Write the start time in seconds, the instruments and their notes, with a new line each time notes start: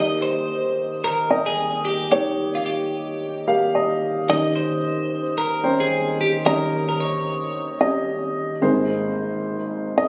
Already playing: upright piano D#2 D#3 A#3 G4 D#5, clean electric guitar D#5
0.22 clean electric guitar C5
1.04 clean electric guitar A#4
1.30 upright piano A#3 D#5 G5
1.46 clean electric guitar G#4
1.85 clean electric guitar G4
2.12 upright piano D#2 D#3 A#3 G4 C#5, clean electric guitar G4
2.55 clean electric guitar F4
2.66 clean electric guitar G4
3.47 upright piano A#3 G4 F5
3.75 upright piano D#5
4.29 upright piano D#2 D#3 C#4 G4 D#5, clean electric guitar D#5
4.56 clean electric guitar C5
5.38 clean electric guitar A#4
5.63 upright piano C#4 C5 G5
5.80 clean electric guitar G#4
6.21 clean electric guitar G4
6.45 upright piano D#2 D#3 C#4 G4 D#5, clean electric guitar A#4
6.89 clean electric guitar A#4
7.00 clean electric guitar C#5
7.81 upright piano C#4 G4 D#5
8.62 upright piano G#1 G#2 A#3 G#4 C5
9.97 upright piano A#3 G#4 D#5